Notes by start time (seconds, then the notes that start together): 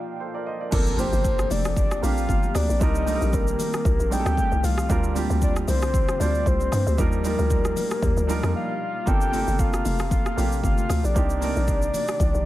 Already playing: F3 A#3 D4 D#4 F4 G4 D5 F5 G5
0.20 A4 C5
0.34 A#4 D5
0.46 C5 D#5
0.61 A#4 D5
0.71 G1 F3 A#3 C4 D4 G4 A4 A#4, kick, crash, impact, shaker
0.86 shaker
0.97 F3 A#3 C4 D4 G4 C5, open hi-hat, high conga, shaker
1.13 G1, shaker
1.24 kick, shaker
1.39 cross-stick, shaker
1.50 F1 D5, open hi-hat, high conga, low conga, shaker
1.65 cross-stick, shaker
1.76 D5, kick, low conga, shaker
1.91 cross-stick, shaker
2.01 A#1 F3 A#3 C4 D4 G4 F5, open hi-hat, high conga, shaker
2.17 shaker
2.29 G1, kick, high conga, shaker
2.43 high conga, shaker
2.55 D2 D5, cross-stick, open hi-hat, high conga, low conga, shaker
2.69 A#1, shaker
2.80 C2 D#3 G3 C4 D4 D#4 A#4 D#5, kick, shaker
2.95 shaker
3.05 G3 C4 D4 D#4 A4, open hi-hat, high conga, shaker
3.15 A#4
3.21 A#1, shaker
3.33 A#4, kick, shaker
3.47 shaker
3.59 open hi-hat, high conga, low conga, shaker
3.73 cross-stick, shaker
3.85 C2, kick, low conga, shaker
4.00 A#1, shaker
4.10 G3 C4 D4 D#4 G#4 G5, open hi-hat, high conga, shaker
4.19 A4
4.26 D2, cross-stick, shaker
4.37 kick, high conga, shaker
4.52 C2, high conga, shaker
4.63 C2 F5, open hi-hat, high conga, low conga, shaker
4.78 cross-stick, shaker
4.88 D2 D3 G3 A#3 C4 D4 F4 G4 A#4, kick, shaker
5.04 shaker
5.14 G3 C4 D4 F4 G4, open hi-hat, high conga, shaker
5.30 D2, shaker
5.42 D5, kick, shaker
5.56 cross-stick, shaker
5.68 C2 C5, open hi-hat, high conga, low conga, shaker
5.82 cross-stick, shaker
5.94 kick, low conga, shaker
6.08 cross-stick, shaker
6.19 D2 G3 C4 D4 F4 C5 D5, open hi-hat, high conga, shaker
6.35 shaker
6.46 C2 C5, kick, high conga, shaker
6.60 high conga, shaker
6.72 G2, cross-stick, open hi-hat, high conga, low conga, shaker
6.87 D2, shaker
6.97 D#2 F3 G3 A#3 D4 D#4 F4 A#4 D5, kick, shaker
7.12 shaker
7.23 G3 D4 D#4 F4 A#4, open hi-hat, high conga, shaker
7.39 D2, shaker
7.50 kick, shaker
7.65 cross-stick, shaker
7.76 open hi-hat, high conga, low conga, shaker
7.91 cross-stick, shaker
8.02 D#2, kick, low conga, shaker
8.17 D2, shaker
8.27 G3 D4 D#4 F4 A#4, open hi-hat, high conga, shaker
8.43 F2, cross-stick, shaker
8.56 F5
9.06 G1 C3 A#3 C4 D4 F4 G4 A4 G5, kick, shaker
9.21 shaker
9.32 A#3 C4 D4 F4 A4, open hi-hat, high conga, shaker
9.47 G1, shaker
9.59 F5, kick, shaker
9.73 cross-stick, shaker
9.85 F1, open hi-hat, high conga, low conga, shaker
9.99 cross-stick, shaker
10.11 F5, kick, low conga, shaker
10.26 cross-stick, shaker
10.36 A#1 A#3 C4 D4 F4 G4, open hi-hat, high conga, shaker
10.52 shaker
10.63 G1 F5, kick, high conga, shaker
10.78 high conga, shaker
10.89 D2, cross-stick, open hi-hat, high conga, low conga, shaker
11.04 A#1 D5, shaker
11.14 C2 D#3 A#3 C4 D4 D#4 G4 D5, kick, shaker
11.30 shaker
11.40 A#3 C4 D4 D#4 A#4, open hi-hat, high conga, shaker
11.56 A#1, shaker
11.68 kick, shaker
11.82 shaker
11.94 open hi-hat, high conga, low conga, shaker
12.08 cross-stick, shaker
12.20 C2, kick, low conga, shaker
12.35 A#1, shaker